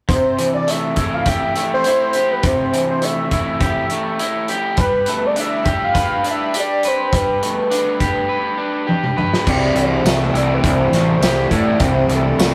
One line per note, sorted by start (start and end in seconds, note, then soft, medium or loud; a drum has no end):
0.09 1.56 C3 medium
0.09 0.50 C5 medium
0.09 kick medium
0.09 closed hi-hat medium
0.39 1.85 E3 soft
0.39 closed hi-hat medium
0.54 0.72 D5 medium
0.68 1.56 A3 medium
0.68 1.15 E5 medium
0.68 closed hi-hat medium
0.96 1.85 E4 medium
0.96 kick medium
0.96 closed hi-hat soft
1.14 1.30 F5 medium
1.26 2.15 G4 medium
1.26 1.71 E5 medium
1.26 kick medium
1.26 closed hi-hat medium
1.56 3.03 A3 medium
1.56 closed hi-hat medium
1.74 2.34 C5 medium
1.84 3.30 E4 medium
1.84 closed hi-hat medium
2.13 3.60 G4 medium
2.13 closed hi-hat soft
2.32 2.48 B4 medium
2.43 3.90 C3 medium
2.43 2.89 C5 medium
2.43 kick medium
2.43 closed hi-hat medium
2.73 4.20 E3 medium
2.73 closed hi-hat medium
2.90 3.06 C5 medium
3.02 3.91 A3 medium
3.02 4.50 E5 medium
3.02 closed hi-hat medium
3.31 4.19 E4 medium
3.31 kick medium
3.31 closed hi-hat soft
3.60 4.49 G4 medium
3.60 kick medium
3.60 closed hi-hat medium
3.90 4.81 A3 medium
3.90 closed hi-hat soft
4.19 4.78 E4 medium
4.19 closed hi-hat medium
4.48 5.11 G4 medium
4.48 closed hi-hat soft
4.77 7.14 G3 medium
4.77 5.28 B4 medium
4.77 kick medium
4.77 closed hi-hat medium
5.06 6.57 A3 medium
5.06 closed hi-hat medium
5.26 5.39 D5 medium
5.36 6.23 D4 medium
5.36 5.85 E5 loud
5.36 closed hi-hat medium
5.65 6.54 G4 medium
5.65 kick medium
5.65 closed hi-hat soft
5.84 6.26 F5 loud
5.94 6.83 B4 medium
5.94 kick medium
5.94 closed hi-hat medium
6.24 7.69 D4 medium
6.24 closed hi-hat medium
6.31 6.55 E5 medium
6.54 7.99 G4 medium
6.54 closed hi-hat medium
6.60 6.89 D5 medium
6.83 8.28 B4 medium
6.83 closed hi-hat medium
6.87 7.18 C5 medium
7.13 8.60 G3 medium
7.13 8.90 B4 medium
7.13 kick medium
7.13 closed hi-hat medium
7.43 8.89 A3 medium
7.43 closed hi-hat medium
7.70 8.57 D4 medium
7.70 closed hi-hat medium
8.00 8.86 G4 medium
8.00 kick medium
8.00 closed hi-hat soft
8.29 9.16 B4 medium
8.58 9.46 D4 medium
8.87 9.46 G4 medium
8.87 high tom soft
9.04 mid tom medium
9.17 9.46 B4 medium
9.17 mid tom medium
9.34 snare medium
9.46 9.70 C2 medium
9.46 10.36 C3 medium
9.46 10.93 C3 medium
9.46 10.35 E3 medium
9.46 10.35 G3 medium
9.46 10.34 E4 medium
9.46 10.33 G4 medium
9.46 9.80 D5 medium
9.46 kick loud
9.46 crash medium
9.75 9.98 C2 medium
9.75 10.63 E3 medium
9.75 10.06 C5 medium
9.75 closed hi-hat medium
10.05 10.28 C2 medium
10.05 10.93 A3 medium
10.05 10.38 E5 loud
10.05 snare loud
10.05 closed hi-hat medium
10.05 tambourine loud
10.33 10.57 C2 medium
10.33 11.19 C3 medium
10.33 11.19 E3 medium
10.33 11.21 G3 medium
10.33 11.50 E4 medium
10.33 11.20 E4 medium
10.33 11.23 G4 medium
10.33 10.54 D5 medium
10.33 closed hi-hat medium
10.55 10.67 B4 medium
10.64 10.87 C2 medium
10.64 12.08 E3 medium
10.64 11.56 C5 loud
10.64 kick medium
10.64 closed hi-hat medium
10.90 11.14 A1 medium
10.90 12.38 A3 medium
10.90 snare soft
10.90 closed hi-hat medium
11.20 11.44 C2 medium
11.20 11.78 C3 medium
11.20 11.78 E3 medium
11.20 11.81 G3 medium
11.20 11.79 E4 medium
11.20 12.54 G4 medium
11.20 11.82 G4 medium
11.20 snare loud
11.20 closed hi-hat medium
11.20 tambourine loud
11.51 11.74 A2 medium
11.51 12.54 E4 medium
11.51 kick medium
11.51 closed hi-hat medium
11.55 11.85 D5 medium
11.79 12.03 C2 medium
11.79 12.54 C3 medium
11.79 12.54 E3 medium
11.79 12.54 G3 medium
11.79 12.54 E4 medium
11.79 12.54 G4 medium
11.79 kick loud
11.79 closed hi-hat medium
11.84 12.12 C5 medium
12.08 12.32 C2 medium
12.08 12.54 E3 medium
12.08 closed hi-hat medium
12.15 12.40 A4 medium
12.38 12.54 C2 medium
12.38 12.54 A3 medium
12.38 snare loud
12.38 closed hi-hat medium
12.38 tambourine medium
12.43 12.54 A4 medium